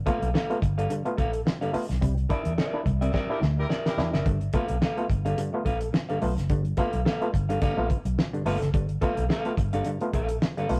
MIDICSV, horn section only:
0, 0, Header, 1, 2, 480
1, 0, Start_track
1, 0, Tempo, 559180
1, 1735, Time_signature, 4, 2, 24, 8
1, 9269, End_track
2, 0, Start_track
2, 0, Title_t, "Horn section"
2, 0, Program_c, 0, 61
2, 2826, Note_on_c, 0, 67, 80
2, 2826, Note_on_c, 0, 70, 82
2, 2828, Note_on_c, 0, 64, 74
2, 2894, Note_off_c, 0, 67, 0
2, 2895, Note_off_c, 0, 70, 0
2, 2896, Note_off_c, 0, 64, 0
2, 3067, Note_on_c, 0, 67, 76
2, 3069, Note_on_c, 0, 70, 93
2, 3071, Note_on_c, 0, 64, 83
2, 3135, Note_off_c, 0, 67, 0
2, 3137, Note_off_c, 0, 70, 0
2, 3138, Note_off_c, 0, 64, 0
2, 3304, Note_on_c, 0, 70, 103
2, 3306, Note_on_c, 0, 64, 93
2, 3308, Note_on_c, 0, 67, 96
2, 3635, Note_off_c, 0, 70, 0
2, 3636, Note_off_c, 0, 64, 0
2, 3637, Note_off_c, 0, 67, 0
2, 9269, End_track
0, 0, End_of_file